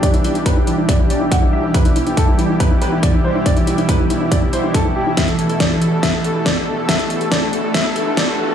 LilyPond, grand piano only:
\new Staff \with { instrumentName = "Grand piano" } { \time 4/4 \key e \minor \tempo 4 = 140 << { d''8 r8 b'8 r8 d''8 d''8 fis''8 e''8 | b'8 r8 a'8 r8 b'8 b'8 d''8 c''8 | d''8 r8 b'8 r8 d''8 c''8 a'8 g'8 | e''8 r8 d''8 r8 e''8 r8 d''8 r8 |
e''8 r8 d''8 r8 e''8 r8 d''8 r8 | } \\ { r16 e'16 e'16 e'16 r16 e'16 e'16 e'16 r16 e'16 r16 e'16 r16 e'16 r16 e'16 | r16 e'16 e'16 e'16 r16 e'16 e'16 e'16 r16 e'16 r16 e'16 r16 e'16 r16 e'16 | r16 e'16 e'16 e'16 r16 e'16 e'16 e'16 r16 e'16 r16 e'16 r16 e'16 r16 e'16 | r16 a'16 a'16 a'16 r16 a'16 a'16 a'16 r16 a'16 a'16 a'16 r16 a'16 a'16 a'16 |
r16 a'16 a'16 a'16 r16 a'16 a'16 a'16 r16 a'16 a'16 a'16 r16 a'16 a'16 a'16 | } >> }